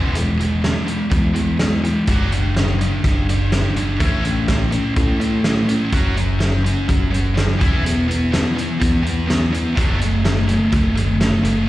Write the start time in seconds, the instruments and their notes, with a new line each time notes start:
Already playing: fingered electric bass E1, distorted electric guitar E3 G#3 B3
0.15 distorted electric guitar E3 G#3, closed hi-hat
0.39 distorted electric guitar E3 G#3, closed hi-hat
0.64 distorted electric guitar E3 G#3, snare, closed hi-hat
0.86 distorted electric guitar E3 G#3, closed hi-hat
1.11 fingered electric bass E2, distorted electric guitar E3 G#3, kick, closed hi-hat
1.34 distorted electric guitar E3 G#3, closed hi-hat
1.59 distorted electric guitar E3 G#3, snare, closed hi-hat
1.84 distorted electric guitar E3 G#3, closed hi-hat
2.07 fingered electric bass F#1, distorted electric guitar F#3 D4 F#4, kick, closed hi-hat
2.32 distorted electric guitar F#3 D4, closed hi-hat
2.57 distorted electric guitar F#3 D4, snare, closed hi-hat
2.81 distorted electric guitar F#3 D4, closed hi-hat
3.04 fingered electric bass F#1, distorted electric guitar F#3 D4, kick, snare, closed hi-hat
3.29 distorted electric guitar F#3 D4, closed hi-hat
3.52 distorted electric guitar F#3 D4, snare, closed hi-hat
3.76 fingered electric bass F#1, distorted electric guitar F#3 D4, closed hi-hat
4.00 fingered electric bass A1, distorted electric guitar A3 C#4 E4, kick, closed hi-hat
4.24 distorted electric guitar A3 C#4, closed hi-hat
4.48 distorted electric guitar A3 C#4, kick, snare, closed hi-hat
4.71 distorted electric guitar A3 C#4, closed hi-hat
4.96 fingered electric bass A2, distorted electric guitar A3 C#4, kick, closed hi-hat
5.20 distorted electric guitar A3 C#4, closed hi-hat
5.44 distorted electric guitar A3 C#4, snare, closed hi-hat
5.69 distorted electric guitar A3 C#4, closed hi-hat
5.92 fingered electric bass F#1, distorted electric guitar F#3 C#4 F#4, kick, closed hi-hat
6.17 distorted electric guitar F#3 C#4, closed hi-hat
6.40 distorted electric guitar F#3 C#4, snare, closed hi-hat
6.64 distorted electric guitar F#3 C#4, closed hi-hat
6.88 fingered electric bass F#1, distorted electric guitar F#3 C#4, kick, closed hi-hat
7.12 distorted electric guitar F#3 C#4, closed hi-hat
7.35 distorted electric guitar F#3 C#4, snare, closed hi-hat
7.59 fingered electric bass E1, distorted electric guitar E3 B3 E4, kick, closed hi-hat
7.84 distorted electric guitar E3 B3, closed hi-hat
8.08 distorted electric guitar E3 B3, closed hi-hat
8.32 distorted electric guitar E3 B3, snare, closed hi-hat
8.56 distorted electric guitar E3 B3, closed hi-hat
8.80 fingered electric bass E2, distorted electric guitar E3 B3, kick, closed hi-hat
9.03 distorted electric guitar E3 B3, closed hi-hat
9.27 distorted electric guitar E3 B3, snare, closed hi-hat
9.52 distorted electric guitar E3 B3, closed hi-hat
9.75 fingered electric bass F#1, distorted electric guitar F#3 A3 D4, kick, closed hi-hat
10.01 distorted electric guitar F#3 A3, closed hi-hat
10.25 distorted electric guitar F#3 A3, snare, closed hi-hat
10.48 distorted electric guitar F#3 A3, closed hi-hat
10.72 fingered electric bass F#1, distorted electric guitar F#3 A3, kick, closed hi-hat
10.96 distorted electric guitar F#3 A3, closed hi-hat
11.20 distorted electric guitar F#3 A3, snare, closed hi-hat
11.43 fingered electric bass F#1, distorted electric guitar F#3 A3, closed hi-hat